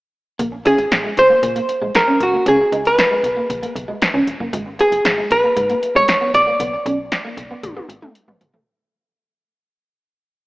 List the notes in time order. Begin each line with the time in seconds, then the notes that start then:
0.39 A#1 A#3, kick, closed hi-hat
0.52 muted clean electric guitar stroke
0.65 C#4 G#4, closed hi-hat
0.78 G#1, closed hi-hat
0.92 A#1, snare, closed hi-hat
1.04 G#3
1.17 C#2 C5, muted clean electric guitar stroke, closed hi-hat
1.30 A#3
1.43 A#2, kick, closed hi-hat
1.56 A#3, closed hi-hat
1.69 muted clean electric guitar stroke, closed hi-hat
1.82 A#1 G#3
1.95 A#4, snare, closed hi-hat
2.07 C#4
2.20 C#2 F#4, muted clean electric guitar stroke, kick, closed hi-hat
2.33 A#3
2.46 C#2 C#4 G#4, kick, closed hi-hat
2.59 muted clean electric guitar stroke
2.72 C#2 D#4, closed hi-hat
2.85 B4, closed hi-hat
2.98 snare, closed hi-hat
3.11 G#3
3.23 B1, muted clean electric guitar stroke, kick, closed hi-hat
3.37 A#3
3.50 A#1, kick, closed hi-hat
3.63 A#3, closed hi-hat
3.75 B1, muted clean electric guitar stroke, kick, closed hi-hat
3.88 G#3
4.02 snare, closed hi-hat
4.14 C#2 C#4
4.27 E1, muted clean electric guitar stroke, closed hi-hat
4.40 F#1 A#3, kick
4.53 G#1 G#3, kick, closed hi-hat
4.66 muted clean electric guitar stroke
4.79 B3 G#4, closed hi-hat
4.92 F#1, closed hi-hat
5.05 G#1, snare, closed hi-hat
5.18 G#3
5.31 A#1 B4, muted clean electric guitar stroke, closed hi-hat
5.44 A#3
5.57 G#2, kick, closed hi-hat
5.70 A#3, closed hi-hat
5.83 muted clean electric guitar stroke, closed hi-hat
5.95 B1 G#3 C#5
6.08 snare, closed hi-hat
6.21 B3
6.34 A#1 D5, muted clean electric guitar stroke, kick, closed hi-hat
6.47 A#3
6.60 B1 B3, kick, closed hi-hat
6.73 muted clean electric guitar stroke
6.86 B1 C#4, closed hi-hat
7.12 snare, closed hi-hat
7.25 A#3
7.37 B1, muted clean electric guitar stroke, kick, closed hi-hat
7.51 B3
7.63 A1, kick, closed hi-hat, high tom
7.77 B3, high tom
7.89 G#1, muted clean electric guitar stroke, closed hi-hat
8.02 A3, mid tom
8.15 closed hi-hat
8.28 A1 B3, mid tom
8.41 G#1, muted clean electric guitar stroke, closed hi-hat, floor tom
8.54 A1 A3, floor tom